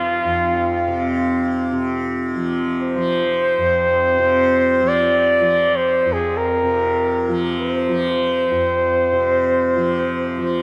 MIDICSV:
0, 0, Header, 1, 4, 480
1, 0, Start_track
1, 0, Tempo, 500000
1, 10197, End_track
2, 0, Start_track
2, 0, Title_t, "Flugelhorn"
2, 0, Program_c, 0, 56
2, 0, Note_on_c, 0, 65, 86
2, 1423, Note_off_c, 0, 65, 0
2, 2714, Note_on_c, 0, 72, 87
2, 4687, Note_on_c, 0, 74, 83
2, 4702, Note_off_c, 0, 72, 0
2, 5533, Note_on_c, 0, 72, 77
2, 5547, Note_off_c, 0, 74, 0
2, 5883, Note_on_c, 0, 68, 70
2, 5897, Note_off_c, 0, 72, 0
2, 6119, Note_on_c, 0, 70, 75
2, 6134, Note_off_c, 0, 68, 0
2, 7055, Note_off_c, 0, 70, 0
2, 7306, Note_on_c, 0, 72, 78
2, 10197, Note_off_c, 0, 72, 0
2, 10197, End_track
3, 0, Start_track
3, 0, Title_t, "Singing bowl"
3, 0, Program_c, 1, 14
3, 0, Note_on_c, 1, 60, 62
3, 0, Note_on_c, 1, 63, 41
3, 0, Note_on_c, 1, 65, 48
3, 2129, Note_off_c, 1, 65, 0
3, 2132, Note_off_c, 1, 60, 0
3, 2151, Note_off_c, 1, 63, 0
3, 10197, End_track
4, 0, Start_track
4, 0, Title_t, "Tanpura"
4, 0, Program_c, 2, 104
4, 0, Note_on_c, 2, 41, 48
4, 0, Note_on_c, 2, 48, 54
4, 0, Note_on_c, 2, 53, 55
4, 235, Note_off_c, 2, 41, 0
4, 239, Note_on_c, 2, 41, 56
4, 837, Note_off_c, 2, 48, 0
4, 841, Note_on_c, 2, 48, 57
4, 1656, Note_off_c, 2, 48, 0
4, 1656, Note_on_c, 2, 48, 57
4, 2260, Note_off_c, 2, 53, 0
4, 2260, Note_on_c, 2, 53, 47
4, 2836, Note_off_c, 2, 53, 0
4, 2836, Note_on_c, 2, 53, 51
4, 3434, Note_off_c, 2, 41, 0
4, 3438, Note_on_c, 2, 41, 49
4, 4011, Note_off_c, 2, 48, 0
4, 4011, Note_on_c, 2, 48, 53
4, 4617, Note_off_c, 2, 53, 0
4, 4617, Note_on_c, 2, 53, 48
4, 5194, Note_off_c, 2, 53, 0
4, 5194, Note_on_c, 2, 53, 50
4, 5812, Note_off_c, 2, 41, 0
4, 5816, Note_on_c, 2, 41, 54
4, 6368, Note_off_c, 2, 48, 0
4, 6372, Note_on_c, 2, 48, 52
4, 6997, Note_off_c, 2, 53, 0
4, 6997, Note_on_c, 2, 53, 53
4, 7579, Note_off_c, 2, 53, 0
4, 7579, Note_on_c, 2, 53, 50
4, 8168, Note_off_c, 2, 41, 0
4, 8172, Note_on_c, 2, 41, 53
4, 8758, Note_off_c, 2, 48, 0
4, 8762, Note_on_c, 2, 48, 53
4, 9373, Note_off_c, 2, 53, 0
4, 9373, Note_on_c, 2, 53, 49
4, 9965, Note_off_c, 2, 53, 0
4, 9965, Note_on_c, 2, 53, 51
4, 10197, Note_off_c, 2, 41, 0
4, 10197, Note_off_c, 2, 48, 0
4, 10197, Note_off_c, 2, 53, 0
4, 10197, End_track
0, 0, End_of_file